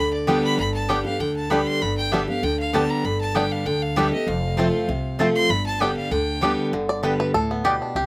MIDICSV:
0, 0, Header, 1, 6, 480
1, 0, Start_track
1, 0, Tempo, 307220
1, 917, Time_signature, 4, 2, 24, 8
1, 12593, End_track
2, 0, Start_track
2, 0, Title_t, "Fiddle"
2, 0, Program_c, 0, 110
2, 0, Note_on_c, 0, 83, 100
2, 189, Note_off_c, 0, 83, 0
2, 208, Note_on_c, 0, 74, 61
2, 437, Note_on_c, 0, 79, 98
2, 461, Note_off_c, 0, 74, 0
2, 678, Note_off_c, 0, 79, 0
2, 687, Note_on_c, 0, 83, 115
2, 902, Note_off_c, 0, 83, 0
2, 914, Note_on_c, 0, 83, 99
2, 1148, Note_off_c, 0, 83, 0
2, 1158, Note_on_c, 0, 81, 100
2, 1394, Note_on_c, 0, 79, 92
2, 1418, Note_off_c, 0, 81, 0
2, 1634, Note_off_c, 0, 79, 0
2, 1644, Note_on_c, 0, 77, 103
2, 1877, Note_on_c, 0, 79, 91
2, 1901, Note_off_c, 0, 77, 0
2, 2117, Note_off_c, 0, 79, 0
2, 2126, Note_on_c, 0, 81, 97
2, 2350, Note_on_c, 0, 83, 98
2, 2373, Note_off_c, 0, 81, 0
2, 2608, Note_on_c, 0, 84, 119
2, 2631, Note_off_c, 0, 83, 0
2, 2837, Note_on_c, 0, 83, 109
2, 2861, Note_off_c, 0, 84, 0
2, 3076, Note_off_c, 0, 83, 0
2, 3085, Note_on_c, 0, 79, 105
2, 3319, Note_on_c, 0, 76, 89
2, 3343, Note_off_c, 0, 79, 0
2, 3568, Note_off_c, 0, 76, 0
2, 3577, Note_on_c, 0, 77, 100
2, 3803, Note_on_c, 0, 79, 104
2, 3827, Note_off_c, 0, 77, 0
2, 4043, Note_off_c, 0, 79, 0
2, 4053, Note_on_c, 0, 77, 106
2, 4280, Note_on_c, 0, 81, 106
2, 4304, Note_off_c, 0, 77, 0
2, 4535, Note_on_c, 0, 82, 109
2, 4559, Note_off_c, 0, 81, 0
2, 4768, Note_on_c, 0, 83, 107
2, 4791, Note_off_c, 0, 82, 0
2, 5004, Note_off_c, 0, 83, 0
2, 5014, Note_on_c, 0, 81, 110
2, 5242, Note_on_c, 0, 79, 100
2, 5266, Note_off_c, 0, 81, 0
2, 5493, Note_on_c, 0, 77, 104
2, 5516, Note_off_c, 0, 79, 0
2, 5716, Note_on_c, 0, 79, 103
2, 5740, Note_off_c, 0, 77, 0
2, 5973, Note_on_c, 0, 77, 97
2, 5996, Note_off_c, 0, 79, 0
2, 6201, Note_on_c, 0, 76, 94
2, 6224, Note_off_c, 0, 77, 0
2, 6433, Note_off_c, 0, 76, 0
2, 6443, Note_on_c, 0, 75, 102
2, 6673, Note_on_c, 0, 77, 97
2, 6696, Note_off_c, 0, 75, 0
2, 8113, Note_off_c, 0, 77, 0
2, 8365, Note_on_c, 0, 84, 120
2, 8592, Note_on_c, 0, 83, 110
2, 8616, Note_off_c, 0, 84, 0
2, 8838, Note_off_c, 0, 83, 0
2, 8847, Note_on_c, 0, 81, 110
2, 9086, Note_on_c, 0, 79, 94
2, 9110, Note_off_c, 0, 81, 0
2, 9317, Note_off_c, 0, 79, 0
2, 9326, Note_on_c, 0, 77, 107
2, 9554, Note_on_c, 0, 79, 98
2, 9577, Note_off_c, 0, 77, 0
2, 10398, Note_off_c, 0, 79, 0
2, 12593, End_track
3, 0, Start_track
3, 0, Title_t, "Mandolin"
3, 0, Program_c, 1, 25
3, 426, Note_on_c, 1, 59, 89
3, 428, Note_on_c, 1, 67, 91
3, 434, Note_on_c, 1, 74, 99
3, 440, Note_on_c, 1, 79, 105
3, 577, Note_off_c, 1, 59, 0
3, 578, Note_off_c, 1, 67, 0
3, 581, Note_off_c, 1, 74, 0
3, 584, Note_off_c, 1, 79, 0
3, 1385, Note_on_c, 1, 59, 88
3, 1391, Note_on_c, 1, 67, 103
3, 1396, Note_on_c, 1, 74, 105
3, 1398, Note_on_c, 1, 79, 101
3, 1536, Note_off_c, 1, 59, 0
3, 1539, Note_off_c, 1, 67, 0
3, 1542, Note_off_c, 1, 74, 0
3, 1543, Note_off_c, 1, 79, 0
3, 2344, Note_on_c, 1, 59, 99
3, 2352, Note_on_c, 1, 67, 89
3, 2355, Note_on_c, 1, 74, 105
3, 2359, Note_on_c, 1, 79, 96
3, 2496, Note_off_c, 1, 59, 0
3, 2500, Note_off_c, 1, 67, 0
3, 2501, Note_off_c, 1, 74, 0
3, 2504, Note_off_c, 1, 79, 0
3, 3305, Note_on_c, 1, 59, 87
3, 3309, Note_on_c, 1, 67, 81
3, 3316, Note_on_c, 1, 74, 88
3, 3319, Note_on_c, 1, 79, 95
3, 3456, Note_off_c, 1, 59, 0
3, 3458, Note_off_c, 1, 67, 0
3, 3462, Note_off_c, 1, 74, 0
3, 3463, Note_off_c, 1, 79, 0
3, 4268, Note_on_c, 1, 59, 83
3, 4276, Note_on_c, 1, 67, 88
3, 4279, Note_on_c, 1, 74, 103
3, 4283, Note_on_c, 1, 79, 105
3, 4418, Note_off_c, 1, 59, 0
3, 4422, Note_off_c, 1, 67, 0
3, 4423, Note_off_c, 1, 74, 0
3, 4425, Note_off_c, 1, 79, 0
3, 5229, Note_on_c, 1, 59, 91
3, 5234, Note_on_c, 1, 67, 92
3, 5238, Note_on_c, 1, 74, 104
3, 5244, Note_on_c, 1, 79, 99
3, 5378, Note_off_c, 1, 59, 0
3, 5380, Note_off_c, 1, 67, 0
3, 5382, Note_off_c, 1, 74, 0
3, 5385, Note_off_c, 1, 79, 0
3, 6189, Note_on_c, 1, 59, 90
3, 6195, Note_on_c, 1, 67, 98
3, 6200, Note_on_c, 1, 74, 98
3, 6204, Note_on_c, 1, 79, 95
3, 6338, Note_off_c, 1, 59, 0
3, 6341, Note_off_c, 1, 67, 0
3, 6343, Note_off_c, 1, 74, 0
3, 6345, Note_off_c, 1, 79, 0
3, 7143, Note_on_c, 1, 60, 87
3, 7150, Note_on_c, 1, 65, 101
3, 7156, Note_on_c, 1, 72, 106
3, 7160, Note_on_c, 1, 81, 95
3, 7295, Note_off_c, 1, 60, 0
3, 7297, Note_off_c, 1, 65, 0
3, 7300, Note_off_c, 1, 72, 0
3, 7303, Note_off_c, 1, 81, 0
3, 8110, Note_on_c, 1, 60, 93
3, 8117, Note_on_c, 1, 65, 101
3, 8119, Note_on_c, 1, 72, 100
3, 8124, Note_on_c, 1, 81, 113
3, 8258, Note_off_c, 1, 60, 0
3, 8261, Note_off_c, 1, 65, 0
3, 8262, Note_off_c, 1, 72, 0
3, 8265, Note_off_c, 1, 81, 0
3, 9067, Note_on_c, 1, 59, 90
3, 9071, Note_on_c, 1, 67, 90
3, 9078, Note_on_c, 1, 74, 109
3, 9082, Note_on_c, 1, 79, 100
3, 9215, Note_off_c, 1, 59, 0
3, 9218, Note_off_c, 1, 67, 0
3, 9221, Note_off_c, 1, 74, 0
3, 9223, Note_off_c, 1, 79, 0
3, 10029, Note_on_c, 1, 59, 97
3, 10034, Note_on_c, 1, 67, 108
3, 10036, Note_on_c, 1, 74, 97
3, 10042, Note_on_c, 1, 79, 109
3, 10176, Note_off_c, 1, 59, 0
3, 10179, Note_off_c, 1, 67, 0
3, 10180, Note_off_c, 1, 74, 0
3, 10183, Note_off_c, 1, 79, 0
3, 10990, Note_on_c, 1, 59, 91
3, 10995, Note_on_c, 1, 67, 85
3, 11000, Note_on_c, 1, 74, 96
3, 11003, Note_on_c, 1, 79, 91
3, 11137, Note_off_c, 1, 59, 0
3, 11139, Note_off_c, 1, 67, 0
3, 11142, Note_off_c, 1, 74, 0
3, 11143, Note_off_c, 1, 79, 0
3, 11942, Note_on_c, 1, 59, 106
3, 11949, Note_on_c, 1, 67, 104
3, 11955, Note_on_c, 1, 74, 111
3, 11959, Note_on_c, 1, 79, 100
3, 12093, Note_off_c, 1, 59, 0
3, 12096, Note_off_c, 1, 67, 0
3, 12099, Note_off_c, 1, 74, 0
3, 12101, Note_off_c, 1, 79, 0
3, 12593, End_track
4, 0, Start_track
4, 0, Title_t, "Five-string banjo"
4, 0, Program_c, 2, 105
4, 439, Note_on_c, 2, 55, 59
4, 447, Note_on_c, 2, 59, 62
4, 450, Note_on_c, 2, 62, 65
4, 548, Note_off_c, 2, 55, 0
4, 550, Note_off_c, 2, 59, 0
4, 553, Note_off_c, 2, 62, 0
4, 1401, Note_on_c, 2, 55, 70
4, 1407, Note_on_c, 2, 59, 65
4, 1410, Note_on_c, 2, 62, 77
4, 1509, Note_off_c, 2, 55, 0
4, 1511, Note_off_c, 2, 59, 0
4, 1513, Note_off_c, 2, 62, 0
4, 2365, Note_on_c, 2, 55, 57
4, 2372, Note_on_c, 2, 59, 61
4, 2379, Note_on_c, 2, 62, 55
4, 2471, Note_off_c, 2, 55, 0
4, 2475, Note_off_c, 2, 59, 0
4, 2478, Note_off_c, 2, 62, 0
4, 3323, Note_on_c, 2, 55, 76
4, 3335, Note_on_c, 2, 59, 73
4, 3344, Note_on_c, 2, 62, 65
4, 3433, Note_off_c, 2, 55, 0
4, 3434, Note_off_c, 2, 59, 0
4, 3436, Note_off_c, 2, 62, 0
4, 4291, Note_on_c, 2, 55, 63
4, 4300, Note_on_c, 2, 59, 58
4, 4302, Note_on_c, 2, 62, 63
4, 4395, Note_off_c, 2, 55, 0
4, 4398, Note_off_c, 2, 59, 0
4, 4400, Note_off_c, 2, 62, 0
4, 5249, Note_on_c, 2, 55, 70
4, 5256, Note_on_c, 2, 59, 67
4, 5262, Note_on_c, 2, 62, 71
4, 5353, Note_off_c, 2, 55, 0
4, 5355, Note_off_c, 2, 59, 0
4, 5359, Note_off_c, 2, 62, 0
4, 6208, Note_on_c, 2, 55, 64
4, 6214, Note_on_c, 2, 59, 58
4, 6217, Note_on_c, 2, 62, 56
4, 6312, Note_off_c, 2, 55, 0
4, 6314, Note_off_c, 2, 59, 0
4, 6316, Note_off_c, 2, 62, 0
4, 7169, Note_on_c, 2, 57, 70
4, 7179, Note_on_c, 2, 60, 68
4, 7181, Note_on_c, 2, 65, 72
4, 7273, Note_off_c, 2, 57, 0
4, 7275, Note_off_c, 2, 60, 0
4, 7278, Note_off_c, 2, 65, 0
4, 8131, Note_on_c, 2, 57, 67
4, 8141, Note_on_c, 2, 65, 67
4, 8142, Note_on_c, 2, 60, 67
4, 8234, Note_off_c, 2, 57, 0
4, 8235, Note_off_c, 2, 60, 0
4, 8237, Note_off_c, 2, 65, 0
4, 9090, Note_on_c, 2, 55, 74
4, 9094, Note_on_c, 2, 59, 68
4, 9105, Note_on_c, 2, 62, 73
4, 9192, Note_off_c, 2, 55, 0
4, 9195, Note_off_c, 2, 59, 0
4, 9196, Note_off_c, 2, 62, 0
4, 10047, Note_on_c, 2, 55, 63
4, 10058, Note_on_c, 2, 59, 69
4, 10059, Note_on_c, 2, 62, 60
4, 10151, Note_off_c, 2, 55, 0
4, 10154, Note_off_c, 2, 59, 0
4, 10156, Note_off_c, 2, 62, 0
4, 10519, Note_on_c, 2, 50, 71
4, 10767, Note_on_c, 2, 74, 109
4, 10984, Note_off_c, 2, 74, 0
4, 10990, Note_on_c, 2, 71, 98
4, 11196, Note_off_c, 2, 50, 0
4, 11228, Note_off_c, 2, 71, 0
4, 11247, Note_on_c, 2, 71, 101
4, 11467, Note_off_c, 2, 71, 0
4, 11473, Note_on_c, 2, 69, 115
4, 11732, Note_on_c, 2, 59, 64
4, 11948, Note_on_c, 2, 67, 89
4, 11968, Note_off_c, 2, 69, 0
4, 12215, Note_on_c, 2, 62, 58
4, 12392, Note_off_c, 2, 59, 0
4, 12418, Note_off_c, 2, 67, 0
4, 12437, Note_on_c, 2, 67, 95
4, 12440, Note_off_c, 2, 62, 0
4, 12593, Note_off_c, 2, 67, 0
4, 12593, End_track
5, 0, Start_track
5, 0, Title_t, "Steel-string acoustic guitar"
5, 0, Program_c, 3, 25
5, 0, Note_on_c, 3, 50, 83
5, 406, Note_off_c, 3, 50, 0
5, 425, Note_on_c, 3, 50, 109
5, 439, Note_on_c, 3, 55, 102
5, 450, Note_on_c, 3, 59, 111
5, 461, Note_on_c, 3, 67, 104
5, 888, Note_off_c, 3, 50, 0
5, 895, Note_off_c, 3, 55, 0
5, 901, Note_off_c, 3, 59, 0
5, 907, Note_off_c, 3, 67, 0
5, 916, Note_on_c, 3, 43, 93
5, 1385, Note_on_c, 3, 50, 85
5, 1399, Note_on_c, 3, 55, 94
5, 1407, Note_on_c, 3, 59, 96
5, 1419, Note_on_c, 3, 67, 99
5, 1615, Note_off_c, 3, 67, 0
5, 1631, Note_off_c, 3, 50, 0
5, 1634, Note_on_c, 3, 67, 58
5, 1638, Note_off_c, 3, 55, 0
5, 1642, Note_off_c, 3, 59, 0
5, 1669, Note_on_c, 3, 59, 46
5, 1831, Note_off_c, 3, 43, 0
5, 1862, Note_off_c, 3, 67, 0
5, 1878, Note_on_c, 3, 50, 94
5, 1880, Note_off_c, 3, 59, 0
5, 2326, Note_off_c, 3, 50, 0
5, 2345, Note_on_c, 3, 50, 98
5, 2357, Note_on_c, 3, 55, 105
5, 2373, Note_on_c, 3, 59, 110
5, 2382, Note_on_c, 3, 67, 113
5, 2808, Note_off_c, 3, 50, 0
5, 2814, Note_off_c, 3, 55, 0
5, 2822, Note_off_c, 3, 59, 0
5, 2827, Note_off_c, 3, 67, 0
5, 2838, Note_on_c, 3, 43, 95
5, 3308, Note_on_c, 3, 50, 89
5, 3326, Note_on_c, 3, 55, 83
5, 3334, Note_on_c, 3, 59, 105
5, 3345, Note_on_c, 3, 67, 94
5, 3538, Note_off_c, 3, 67, 0
5, 3552, Note_off_c, 3, 50, 0
5, 3557, Note_on_c, 3, 67, 60
5, 3561, Note_off_c, 3, 55, 0
5, 3565, Note_off_c, 3, 59, 0
5, 3591, Note_on_c, 3, 59, 48
5, 3752, Note_off_c, 3, 43, 0
5, 3783, Note_off_c, 3, 67, 0
5, 3797, Note_on_c, 3, 50, 92
5, 3800, Note_off_c, 3, 59, 0
5, 4253, Note_off_c, 3, 50, 0
5, 4271, Note_on_c, 3, 50, 101
5, 4283, Note_on_c, 3, 55, 98
5, 4291, Note_on_c, 3, 59, 105
5, 4306, Note_on_c, 3, 67, 108
5, 4731, Note_off_c, 3, 50, 0
5, 4737, Note_off_c, 3, 55, 0
5, 4741, Note_off_c, 3, 59, 0
5, 4748, Note_off_c, 3, 67, 0
5, 4757, Note_on_c, 3, 43, 84
5, 5229, Note_on_c, 3, 50, 82
5, 5243, Note_on_c, 3, 55, 85
5, 5256, Note_on_c, 3, 59, 90
5, 5264, Note_on_c, 3, 67, 88
5, 5670, Note_off_c, 3, 43, 0
5, 5689, Note_off_c, 3, 50, 0
5, 5696, Note_off_c, 3, 55, 0
5, 5703, Note_off_c, 3, 59, 0
5, 5707, Note_off_c, 3, 67, 0
5, 5721, Note_on_c, 3, 50, 90
5, 6172, Note_off_c, 3, 50, 0
5, 6191, Note_on_c, 3, 50, 112
5, 6203, Note_on_c, 3, 55, 105
5, 6212, Note_on_c, 3, 59, 104
5, 6227, Note_on_c, 3, 67, 123
5, 6421, Note_off_c, 3, 67, 0
5, 6433, Note_off_c, 3, 50, 0
5, 6439, Note_off_c, 3, 55, 0
5, 6439, Note_on_c, 3, 67, 57
5, 6443, Note_off_c, 3, 59, 0
5, 6474, Note_on_c, 3, 59, 46
5, 6664, Note_off_c, 3, 67, 0
5, 6681, Note_off_c, 3, 59, 0
5, 6681, Note_on_c, 3, 41, 90
5, 7143, Note_on_c, 3, 53, 92
5, 7157, Note_on_c, 3, 57, 94
5, 7167, Note_on_c, 3, 60, 99
5, 7176, Note_on_c, 3, 65, 106
5, 7592, Note_off_c, 3, 41, 0
5, 7606, Note_off_c, 3, 53, 0
5, 7613, Note_off_c, 3, 57, 0
5, 7618, Note_off_c, 3, 60, 0
5, 7622, Note_off_c, 3, 65, 0
5, 7635, Note_on_c, 3, 48, 92
5, 8107, Note_on_c, 3, 53, 104
5, 8118, Note_on_c, 3, 57, 102
5, 8129, Note_on_c, 3, 60, 106
5, 8141, Note_on_c, 3, 65, 101
5, 8548, Note_off_c, 3, 48, 0
5, 8567, Note_off_c, 3, 53, 0
5, 8573, Note_off_c, 3, 57, 0
5, 8579, Note_off_c, 3, 60, 0
5, 8584, Note_off_c, 3, 65, 0
5, 8590, Note_on_c, 3, 43, 84
5, 9068, Note_on_c, 3, 50, 75
5, 9078, Note_on_c, 3, 55, 88
5, 9088, Note_on_c, 3, 59, 87
5, 9101, Note_on_c, 3, 67, 100
5, 9506, Note_off_c, 3, 43, 0
5, 9528, Note_off_c, 3, 50, 0
5, 9533, Note_off_c, 3, 55, 0
5, 9538, Note_off_c, 3, 59, 0
5, 9544, Note_off_c, 3, 67, 0
5, 9553, Note_on_c, 3, 50, 92
5, 10000, Note_off_c, 3, 50, 0
5, 10018, Note_on_c, 3, 50, 94
5, 10031, Note_on_c, 3, 55, 97
5, 10042, Note_on_c, 3, 59, 119
5, 10053, Note_on_c, 3, 67, 104
5, 10483, Note_off_c, 3, 50, 0
5, 10489, Note_off_c, 3, 55, 0
5, 10495, Note_off_c, 3, 59, 0
5, 10500, Note_off_c, 3, 67, 0
5, 10515, Note_on_c, 3, 43, 90
5, 10980, Note_on_c, 3, 50, 92
5, 10991, Note_on_c, 3, 55, 97
5, 11003, Note_on_c, 3, 59, 87
5, 11015, Note_on_c, 3, 67, 93
5, 11428, Note_off_c, 3, 43, 0
5, 11444, Note_off_c, 3, 50, 0
5, 11449, Note_off_c, 3, 55, 0
5, 11455, Note_off_c, 3, 59, 0
5, 11461, Note_off_c, 3, 67, 0
5, 11474, Note_on_c, 3, 45, 97
5, 11931, Note_off_c, 3, 45, 0
5, 11949, Note_on_c, 3, 47, 99
5, 12408, Note_off_c, 3, 47, 0
5, 12436, Note_on_c, 3, 48, 91
5, 12593, Note_off_c, 3, 48, 0
5, 12593, End_track
6, 0, Start_track
6, 0, Title_t, "Upright bass"
6, 0, Program_c, 4, 32
6, 0, Note_on_c, 4, 38, 83
6, 630, Note_off_c, 4, 38, 0
6, 905, Note_on_c, 4, 31, 86
6, 1585, Note_off_c, 4, 31, 0
6, 1866, Note_on_c, 4, 38, 89
6, 2545, Note_off_c, 4, 38, 0
6, 2836, Note_on_c, 4, 31, 82
6, 3511, Note_off_c, 4, 31, 0
6, 3793, Note_on_c, 4, 38, 87
6, 4469, Note_off_c, 4, 38, 0
6, 4752, Note_on_c, 4, 31, 85
6, 5428, Note_off_c, 4, 31, 0
6, 5712, Note_on_c, 4, 38, 94
6, 6388, Note_off_c, 4, 38, 0
6, 6666, Note_on_c, 4, 29, 103
6, 7344, Note_off_c, 4, 29, 0
6, 7627, Note_on_c, 4, 36, 82
6, 8304, Note_off_c, 4, 36, 0
6, 8590, Note_on_c, 4, 31, 102
6, 9266, Note_off_c, 4, 31, 0
6, 9546, Note_on_c, 4, 38, 88
6, 10224, Note_off_c, 4, 38, 0
6, 10507, Note_on_c, 4, 31, 93
6, 11184, Note_off_c, 4, 31, 0
6, 11473, Note_on_c, 4, 38, 89
6, 12148, Note_off_c, 4, 38, 0
6, 12424, Note_on_c, 4, 36, 96
6, 12593, Note_off_c, 4, 36, 0
6, 12593, End_track
0, 0, End_of_file